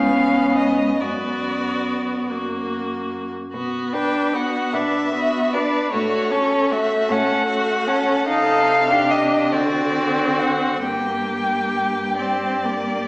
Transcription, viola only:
0, 0, Header, 1, 2, 480
1, 0, Start_track
1, 0, Key_signature, 2, "minor"
1, 0, Tempo, 843882
1, 570, Time_signature, 6, 3, 24, 8
1, 2014, Tempo, 796813
1, 3454, Tempo, 775194
1, 4414, Tempo, 813008
1, 4883, Key_signature, -2, "minor"
1, 5374, Tempo, 877193
1, 6814, Tempo, 958466
1, 7483, End_track
2, 0, Start_track
2, 0, Title_t, "Viola"
2, 0, Program_c, 0, 41
2, 0, Note_on_c, 0, 59, 46
2, 556, Note_off_c, 0, 59, 0
2, 571, Note_on_c, 0, 59, 36
2, 1309, Note_on_c, 0, 58, 35
2, 1317, Note_off_c, 0, 59, 0
2, 1904, Note_off_c, 0, 58, 0
2, 2015, Note_on_c, 0, 59, 33
2, 2251, Note_on_c, 0, 62, 38
2, 2260, Note_off_c, 0, 59, 0
2, 2493, Note_on_c, 0, 59, 37
2, 2502, Note_off_c, 0, 62, 0
2, 2735, Note_on_c, 0, 62, 40
2, 2744, Note_off_c, 0, 59, 0
2, 2966, Note_off_c, 0, 62, 0
2, 2970, Note_on_c, 0, 59, 42
2, 3218, Note_on_c, 0, 62, 37
2, 3227, Note_off_c, 0, 59, 0
2, 3449, Note_off_c, 0, 62, 0
2, 3452, Note_on_c, 0, 57, 42
2, 3687, Note_on_c, 0, 61, 43
2, 3696, Note_off_c, 0, 57, 0
2, 3940, Note_on_c, 0, 57, 47
2, 3949, Note_off_c, 0, 61, 0
2, 4174, Note_on_c, 0, 61, 46
2, 4183, Note_off_c, 0, 57, 0
2, 4404, Note_off_c, 0, 61, 0
2, 4408, Note_on_c, 0, 57, 47
2, 4645, Note_on_c, 0, 61, 46
2, 4654, Note_off_c, 0, 57, 0
2, 4878, Note_off_c, 0, 61, 0
2, 4882, Note_on_c, 0, 63, 48
2, 5225, Note_off_c, 0, 63, 0
2, 5244, Note_on_c, 0, 62, 45
2, 5603, Note_on_c, 0, 60, 47
2, 5611, Note_off_c, 0, 62, 0
2, 6324, Note_off_c, 0, 60, 0
2, 6328, Note_on_c, 0, 58, 37
2, 6982, Note_off_c, 0, 58, 0
2, 7033, Note_on_c, 0, 60, 46
2, 7271, Note_on_c, 0, 58, 37
2, 7279, Note_off_c, 0, 60, 0
2, 7483, Note_off_c, 0, 58, 0
2, 7483, End_track
0, 0, End_of_file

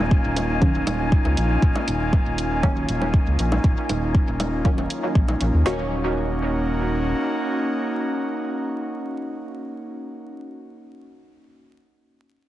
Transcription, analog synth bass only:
0, 0, Header, 1, 2, 480
1, 0, Start_track
1, 0, Key_signature, -6, "minor"
1, 0, Tempo, 504202
1, 1547, Time_signature, 4, 2, 24, 8
1, 11886, End_track
2, 0, Start_track
2, 0, Title_t, "Analog synth bass"
2, 0, Program_c, 0, 38
2, 0, Note_on_c, 0, 27, 92
2, 187, Note_off_c, 0, 27, 0
2, 231, Note_on_c, 0, 27, 84
2, 786, Note_off_c, 0, 27, 0
2, 827, Note_on_c, 0, 27, 93
2, 1147, Note_off_c, 0, 27, 0
2, 1191, Note_on_c, 0, 37, 102
2, 1281, Note_off_c, 0, 37, 0
2, 1307, Note_on_c, 0, 34, 92
2, 1495, Note_off_c, 0, 34, 0
2, 1547, Note_on_c, 0, 27, 93
2, 1643, Note_off_c, 0, 27, 0
2, 1787, Note_on_c, 0, 27, 93
2, 2107, Note_off_c, 0, 27, 0
2, 2151, Note_on_c, 0, 27, 82
2, 2706, Note_off_c, 0, 27, 0
2, 2747, Note_on_c, 0, 27, 85
2, 3067, Note_off_c, 0, 27, 0
2, 3111, Note_on_c, 0, 37, 97
2, 3201, Note_off_c, 0, 37, 0
2, 3227, Note_on_c, 0, 34, 87
2, 3416, Note_off_c, 0, 34, 0
2, 3466, Note_on_c, 0, 27, 97
2, 3563, Note_off_c, 0, 27, 0
2, 3707, Note_on_c, 0, 27, 89
2, 4027, Note_off_c, 0, 27, 0
2, 4071, Note_on_c, 0, 27, 82
2, 4626, Note_off_c, 0, 27, 0
2, 4907, Note_on_c, 0, 34, 86
2, 5095, Note_off_c, 0, 34, 0
2, 5147, Note_on_c, 0, 34, 84
2, 5243, Note_off_c, 0, 34, 0
2, 5271, Note_on_c, 0, 39, 93
2, 5361, Note_off_c, 0, 39, 0
2, 5387, Note_on_c, 0, 27, 93
2, 6789, Note_off_c, 0, 27, 0
2, 11886, End_track
0, 0, End_of_file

